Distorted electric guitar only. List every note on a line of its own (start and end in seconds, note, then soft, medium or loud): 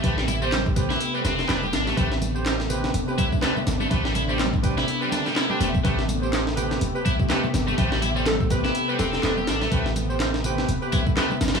0.04 0.15 A3 medium
0.18 0.23 G3 loud
0.28 0.35 E4 medium
0.42 0.50 G3 loud
0.91 1.13 E4 medium
1.15 1.19 G3 loud
1.25 1.48 C4 loud
1.49 1.62 D4 loud
1.63 1.72 G4 loud
1.73 1.84 D4 medium
1.87 1.95 A3 medium
1.97 2.08 A3 loud
3.18 3.25 E4 medium
3.43 3.53 A3 loud
3.81 3.86 A3 medium
3.91 4.02 A3 medium
4.05 4.10 G3 loud
4.15 4.22 E4 medium
4.29 4.37 G3 loud
4.78 5.00 E4 medium
5.02 5.06 G3 loud
5.12 5.25 D4 loud
5.26 5.34 G3 loud
5.36 5.49 E4 medium
5.50 5.58 D4 loud
5.61 5.67 A3 loud
5.85 5.95 A3 loud
7.06 7.12 E4 medium
7.30 7.40 A3 loud
7.68 7.73 A3 medium
7.78 7.89 A3 medium
7.92 7.97 G3 loud
8.03 8.09 E4 medium
8.16 8.24 G3 loud
8.65 8.88 E4 medium
8.89 8.94 G3 loud
8.99 9.22 C4 loud
9.23 9.36 D4 loud
9.37 9.46 G4 loud
9.48 9.58 D4 medium
9.62 9.69 A3 medium
9.72 9.82 A3 loud
10.93 10.99 E4 medium
11.17 11.28 A3 loud
11.55 11.60 A3 medium